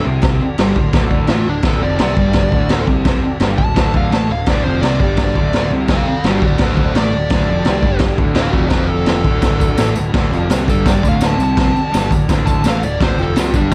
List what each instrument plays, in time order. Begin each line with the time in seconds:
0.03 picked electric bass C2, distorted electric guitar C3 C4, transistor combo organ F#4 A4 E5
0.21 transistor combo organ F#4 A4 E5, kick, snare, crash
0.41 transistor combo organ F#4 A4 D5, muted picked electric bass stroke, muted distorted electric guitar stroke
0.58 picked electric bass G1, distorted electric guitar G2 G3, transistor combo organ F#4 A4 D5 C6, snare, crash
0.75 picked electric bass D1, distorted electric guitar D2, transistor combo organ F#4 A4 D5, kick
0.93 picked electric bass D1, distorted electric guitar D2 D3, transistor combo organ F#4 A4 D5, kick, snare, crash
1.10 transistor combo organ F#4 A4 D5, kick
1.27 picked electric bass A1, distorted electric guitar A2 A3, lead electric guitar F4, transistor combo organ F#4 A4 D5, snare, crash
1.44 picked electric bass D1, distorted electric guitar D2, transistor combo organ F#4 A4 D5
1.48 lead electric guitar D4
1.63 picked electric bass D1, distorted electric guitar D2 D3, transistor combo organ F#4 A4, kick, snare, crash
1.67 lead electric guitar A4, transistor combo organ D5
1.81 picked electric bass F1, distorted electric guitar F2 F3, transistor combo organ F#4 A4 D5, lead electric guitar D5
1.99 picked electric bass C2, distorted electric guitar C3 C4, transistor combo organ F#4 A4 D5, snare, crash
2.16 picked electric bass G1, distorted electric guitar G2 G3, transistor combo organ F#4 A4 B4, kick
2.33 transistor combo organ F#4 A4, kick, snare, crash
2.37 transistor combo organ D5
2.52 picked electric bass D1, distorted electric guitar D2 D3, transistor combo organ F#4 A4 D5, kick
2.69 transistor combo organ F#4 A4 C5, snare, crash
2.87 picked electric bass C2, distorted electric guitar C3 C4, transistor combo organ F#4 A4 D5, kick
3.04 transistor combo organ F#4 A4 B4, kick, snare, crash
3.23 transistor combo organ F#4 A4 D5, muted picked electric bass stroke, muted distorted electric guitar stroke
3.40 picked electric bass G1, distorted electric guitar G2 G3, transistor combo organ F#4 A4 D5, snare, crash
3.58 picked electric bass D1, distorted electric guitar D2, transistor combo organ F#4 A4 D5, lead electric guitar A5, kick
3.74 picked electric bass D1, distorted electric guitar D2 D3, transistor combo organ F#4 A4 D5, kick, snare, crash
3.94 transistor combo organ F#4 A4 D5, lead electric guitar F5, kick
4.11 picked electric bass A1, distorted electric guitar A2 A3, transistor combo organ F#4 A4 D5, lead electric guitar A5, snare, crash
4.28 picked electric bass D1, distorted electric guitar D2, transistor combo organ F#4 A4 B4, lead electric guitar F5
4.46 picked electric bass D1, distorted electric guitar D2 D3, transistor combo organ F#4 A4 B4, lead electric guitar D5, kick, snare, crash
4.62 distorted electric guitar F2, transistor combo organ F#4 A4 D5, lead electric guitar C5
4.66 picked electric bass F1, distorted electric guitar F3
4.79 picked electric bass C2, distorted electric guitar C3, transistor combo organ F#4 A4 D5, lead electric guitar D5, crash
4.84 distorted electric guitar C4, snare
4.99 picked electric bass G1, distorted electric guitar G2 G3, transistor combo organ F#4 A4 D5, lead electric guitar D5, kick
5.14 transistor combo organ F#4 A4 D5, kick, snare, crash
5.32 picked electric bass D1, distorted electric guitar D2, transistor combo organ F#4 A4 D5, kick
5.37 distorted electric guitar D3
5.51 transistor combo organ F#4 A4 D5, snare, crash
5.70 picked electric bass C2, distorted electric guitar C3 C4, transistor combo organ F#4 A4 D5
5.87 transistor combo organ F#4 A4 D5, lead electric guitar A4 F5, kick, snare, crash
6.05 transistor combo organ F#4 A4 D5, lead electric guitar A4 F5, muted picked electric bass stroke, muted distorted electric guitar stroke
6.24 picked electric bass G1, distorted electric guitar G2 G3, transistor combo organ F#4 A4 B4, lead electric guitar F#4, snare, crash
6.28 lead electric guitar D5
6.41 picked electric bass D1, distorted electric guitar D2, transistor combo organ F#4 A4 D5, lead electric guitar F#4, kick
6.46 lead electric guitar D5
6.58 picked electric bass D1, distorted electric guitar D2 D3, transistor combo organ F#4 A4 B4, kick, snare, crash
6.64 lead electric guitar A4 C5
6.77 transistor combo organ F#4 A4 D5, lead electric guitar A4 C5, kick
6.95 picked electric bass A1, distorted electric guitar A2 A3, transistor combo organ F#4 A4 D5, lead electric guitar D5, snare, crash
7.13 picked electric bass D1, distorted electric guitar D2, transistor combo organ F#4 A4 D5
7.30 picked electric bass D1, distorted electric guitar D2 D3, transistor combo organ F#4 A4 D5, kick, snare, crash
7.49 picked electric bass F1, distorted electric guitar F2 F3, transistor combo organ F#4 A4 D5
7.65 picked electric bass C2, distorted electric guitar C3 C4, snare, crash
7.69 transistor combo organ F#4 A4 D5
7.83 picked electric bass G1, distorted electric guitar G2 G3, transistor combo organ F#4 A4 D5, kick
7.99 kick, snare, crash
8.04 transistor combo organ F#4 A4 D5
8.18 picked electric bass D1, distorted electric guitar D2 D3, transistor combo organ F#4 A4 D5, kick
8.35 transistor combo organ F#4 A4 D5, lead electric guitar A4 F5, snare, crash
8.52 picked electric bass F1, distorted electric guitar F2, lead electric guitar F#4 D5, transistor combo organ F#4 A4, kick
8.56 distorted electric guitar F3, transistor combo organ D5
8.68 lead electric guitar A4 C5, kick, snare, crash
8.72 transistor combo organ F#4 A4 D5
8.87 lead electric guitar A4
8.93 transistor combo organ F#4 A4 D5
9.06 transistor combo organ F#4 A4 D5, snare, crash
9.24 picked electric bass D1, distorted electric guitar D2 D3, transistor combo organ F#4 A4 D5, kick
9.42 picked electric bass D1, distorted electric guitar D2 D3, transistor combo organ F#4 A4 D5, kick, snare, tambourine, crash
9.60 transistor combo organ F#4 A4 D5, kick, tambourine
9.77 picked electric bass A1, distorted electric guitar A2 A3, transistor combo organ F#4 A4 D5, snare, tambourine, crash
9.95 picked electric bass D1, distorted electric guitar D2, transistor combo organ F#4 A4 B4, tambourine
10.13 picked electric bass D1, distorted electric guitar D2 D3, transistor combo organ F#4 A4 C5, kick, snare, crash
10.30 picked electric bass F1, distorted electric guitar F2 F3, transistor combo organ F#4 A4 D5, tambourine
10.50 picked electric bass C2, distorted electric guitar C3 C4, transistor combo organ F#4 A4 C5, snare, tambourine, crash
10.67 picked electric bass G1, distorted electric guitar G2 G3, transistor combo organ F#4 A4 D5, lead electric guitar A4, kick, tambourine
10.86 transistor combo organ F#4 A4 D5, kick, snare, tambourine, crash
10.91 lead electric guitar D5
11.01 picked electric bass D1, distorted electric guitar D2 D3, transistor combo organ F#4 A4 D5, kick, tambourine
11.08 lead electric guitar F5
11.21 transistor combo organ F#4 A4 D5, snare, tambourine, crash
11.26 lead electric guitar A5
11.38 picked electric bass C2, distorted electric guitar C3 C4, transistor combo organ F#4 A4 D5, tambourine
11.44 lead electric guitar A5
11.57 transistor combo organ F#4 A4 D5, kick, snare, crash
11.74 transistor combo organ F#4 A4 D5, muted distorted electric guitar stroke, muted picked electric bass stroke, tambourine
11.91 picked electric bass G1, distorted electric guitar G2 G3, transistor combo organ F#4 A4, snare, tambourine, crash
11.96 transistor combo organ D5
12.11 picked electric bass D1, distorted electric guitar D2, transistor combo organ F#4 A4 D5, kick, tambourine
12.29 picked electric bass D1, distorted electric guitar D2 D3, transistor combo organ F#4 A4 B4, kick, snare, tambourine, crash
12.46 transistor combo organ F#4 A4 D5, lead electric guitar A5, kick, tambourine
12.64 picked electric bass A1, distorted electric guitar A2 A3, transistor combo organ F#4 A4 B4, lead electric guitar F5, snare, tambourine, crash
12.82 picked electric bass D1, distorted electric guitar D2, transistor combo organ F#4 A4 D5, lead electric guitar D5, tambourine
13.00 picked electric bass D1, distorted electric guitar D2 D3, transistor combo organ F#4 A4 E5, lead electric guitar C5, kick, snare, crash
13.16 picked electric bass F1, distorted electric guitar F2 F3, transistor combo organ F#4 A4 D5, tambourine
13.22 lead electric guitar A4
13.36 picked electric bass C2, distorted electric guitar C3 C4, lead electric guitar F4, transistor combo organ F#4 A4 D5, snare, tambourine, crash
13.53 picked electric bass G1, distorted electric guitar G2 G3, lead electric guitar D4, transistor combo organ F#4 A4 B4, kick, tambourine